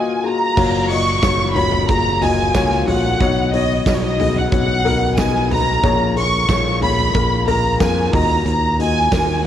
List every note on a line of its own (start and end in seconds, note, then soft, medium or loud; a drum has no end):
0.00 0.20 D#2 medium
0.00 0.20 D#3 medium
0.00 0.24 A#3 medium
0.00 0.24 F4 medium
0.00 0.24 F#4 medium
0.00 0.59 A#4 medium
0.00 0.57 C#5 medium
0.00 0.59 D#5 loud
0.00 0.59 F#5 medium
0.00 0.22 G#5 medium
0.24 0.53 A#3 medium
0.24 0.53 F4 medium
0.24 0.53 F#4 medium
0.24 0.53 G#4 medium
0.24 0.91 A#5 medium
0.57 1.19 F#1 loud
0.57 0.86 A#3 medium
0.57 0.86 F4 medium
0.57 0.86 F#4 medium
0.57 0.86 C#5 loud
0.57 kick loud
0.57 crash loud
0.90 1.19 A#3 medium
0.90 1.19 F4 medium
0.90 1.19 F#4 medium
0.90 1.19 D#5 medium
0.90 1.52 C#6 loud
0.90 hi-hat pedal medium
0.90 open hi-hat medium
1.23 1.85 F#1 medium
1.23 1.52 A#3 medium
1.23 1.52 F4 medium
1.23 1.52 F#4 medium
1.23 1.52 C#5 medium
1.23 kick loud
1.23 snare loud
1.23 hi-hat pedal medium
1.23 open hi-hat loud
1.23 tambourine medium
1.55 1.85 A#3 medium
1.55 1.85 F4 medium
1.55 1.85 F#4 medium
1.55 1.85 C#5 medium
1.55 1.89 B5 loud
1.55 floor tom medium
1.55 hi-hat pedal medium
1.55 open hi-hat medium
1.72 floor tom medium
1.89 2.51 F#1 medium
1.89 2.18 A#3 medium
1.89 2.18 F4 medium
1.89 2.18 F#4 medium
1.89 2.18 G#4 medium
1.89 2.20 A#5 loud
1.89 kick loud
1.89 hi-hat pedal medium
1.89 open hi-hat medium
2.21 2.51 A#3 medium
2.21 2.51 F4 medium
2.21 2.51 F#4 medium
2.21 2.51 D#5 medium
2.21 2.88 G#5 loud
2.21 floor tom medium
2.21 hi-hat pedal medium
2.21 open hi-hat medium
2.54 2.85 C#2 loud
2.54 2.84 A#3 loud
2.54 2.84 F4 medium
2.54 2.84 F#4 medium
2.54 2.84 C#5 medium
2.54 kick loud
2.54 snare loud
2.54 hi-hat pedal medium
2.54 open hi-hat loud
2.54 tambourine medium
2.71 snare soft
2.87 3.18 A#1 medium
2.87 3.17 A#3 medium
2.87 3.17 F4 medium
2.87 3.17 F#4 medium
2.87 3.17 C#5 medium
2.87 3.50 F#5 medium
2.87 floor tom medium
2.87 hi-hat pedal medium
2.87 open hi-hat medium
3.20 3.82 B1 loud
3.20 4.15 B2 medium
3.20 3.50 B3 medium
3.20 3.50 D#4 medium
3.20 3.50 F#4 medium
3.20 3.50 C#5 loud
3.20 kick loud
3.20 hi-hat pedal medium
3.20 open hi-hat medium
3.53 3.83 B3 medium
3.53 3.83 D#4 medium
3.53 3.83 F#4 medium
3.53 3.83 C#5 medium
3.53 3.85 D#5 medium
3.53 hi-hat pedal medium
3.53 open hi-hat medium
3.86 4.48 B1 loud
3.86 4.16 B3 medium
3.86 4.16 D#4 medium
3.86 4.16 F#4 medium
3.86 4.16 C#5 medium
3.86 3.93 D#5 medium
3.86 kick loud
3.86 snare loud
3.86 hi-hat pedal medium
3.86 open hi-hat loud
3.86 tambourine medium
3.93 4.00 C#5 medium
4.01 4.36 D#5 medium
4.19 4.48 B3 medium
4.19 4.48 D#4 medium
4.19 4.48 F#4 medium
4.19 4.48 G#4 medium
4.19 floor tom medium
4.19 hi-hat pedal medium
4.19 open hi-hat medium
4.36 4.51 F#5 medium
4.36 floor tom medium
4.52 5.80 B1 loud
4.52 4.81 B3 medium
4.52 4.81 D#4 medium
4.52 4.81 F#4 medium
4.52 4.81 C#5 medium
4.52 5.14 F#5 loud
4.52 kick loud
4.52 hi-hat pedal medium
4.52 open hi-hat medium
4.85 5.14 B3 medium
4.85 5.14 D#4 medium
4.85 5.14 F#4 medium
4.85 5.14 A#4 loud
4.85 floor tom medium
4.85 hi-hat pedal medium
4.85 open hi-hat medium
5.17 5.47 B3 loud
5.17 5.47 D#4 medium
5.17 5.47 F#4 medium
5.17 5.47 D#5 loud
5.17 5.51 G#5 medium
5.17 kick loud
5.17 snare loud
5.17 hi-hat pedal medium
5.17 open hi-hat medium
5.17 tambourine medium
5.35 snare soft
5.50 5.80 B3 medium
5.50 5.80 D#4 medium
5.50 5.80 F#4 medium
5.50 5.80 B4 medium
5.50 6.13 A#5 loud
5.50 floor tom medium
5.50 hi-hat pedal medium
5.50 open hi-hat medium
5.83 6.45 A#1 loud
5.83 6.78 A#2 medium
5.83 6.13 A#3 medium
5.83 6.13 F4 medium
5.83 6.13 G#4 medium
5.83 6.13 C#5 loud
5.83 kick loud
5.83 hi-hat pedal medium
5.83 open hi-hat loud
6.16 6.46 A#3 medium
6.16 6.46 F4 medium
6.16 6.46 G#4 medium
6.16 6.46 C#5 medium
6.16 6.79 C#6 loud
6.16 hi-hat pedal medium
6.16 open hi-hat medium
6.49 7.11 A#1 medium
6.49 6.79 A#3 medium
6.49 6.79 F4 medium
6.49 6.79 G#4 medium
6.49 6.79 C#5 medium
6.49 kick loud
6.49 snare loud
6.49 hi-hat pedal medium
6.49 open hi-hat medium
6.49 tambourine medium
6.82 7.11 A#3 medium
6.82 7.11 F4 medium
6.82 7.11 G#4 medium
6.82 7.11 C#5 medium
6.82 7.44 B5 loud
6.82 floor tom medium
6.82 hi-hat pedal medium
6.82 open hi-hat medium
6.99 floor tom medium
7.14 7.77 A#1 loud
7.14 7.44 A#3 medium
7.14 7.44 F4 medium
7.14 7.44 G#4 medium
7.14 7.44 A#4 medium
7.14 kick loud
7.14 hi-hat pedal medium
7.14 open hi-hat medium
7.47 7.77 A#3 medium
7.47 7.77 F4 medium
7.47 7.77 G#4 medium
7.47 7.77 A#4 loud
7.47 7.81 A#5 medium
7.47 floor tom medium
7.47 hi-hat pedal medium
7.47 open hi-hat medium
7.80 8.11 F2 loud
7.80 8.10 A#3 loud
7.80 8.10 F4 medium
7.80 8.10 G#4 medium
7.80 8.10 A#4 loud
7.80 8.12 G#5 medium
7.80 kick loud
7.80 snare loud
7.80 hi-hat pedal medium
7.80 open hi-hat loud
7.80 tambourine medium
8.13 8.44 D#2 medium
8.13 9.09 D#3 medium
8.13 8.72 A#3 medium
8.13 8.72 F4 medium
8.13 8.72 F#4 medium
8.13 8.73 D#5 medium
8.13 8.45 A#5 medium
8.13 kick loud
8.13 floor tom medium
8.13 hi-hat pedal medium
8.13 open hi-hat medium
8.46 9.08 D#2 loud
8.46 8.78 A#5 medium
8.46 hi-hat pedal medium
8.46 open hi-hat medium
8.79 9.09 A#3 medium
8.79 9.09 F4 medium
8.79 9.09 F#4 medium
8.79 9.09 D#5 medium
8.79 9.42 G#5 loud
8.79 hi-hat pedal medium
8.79 open hi-hat medium
9.12 9.47 D#2 loud
9.12 9.42 A#3 medium
9.12 9.42 F4 medium
9.12 9.42 F#4 medium
9.12 9.42 A#4 medium
9.12 kick loud
9.12 snare loud
9.12 hi-hat pedal medium
9.12 open hi-hat medium
9.12 tambourine medium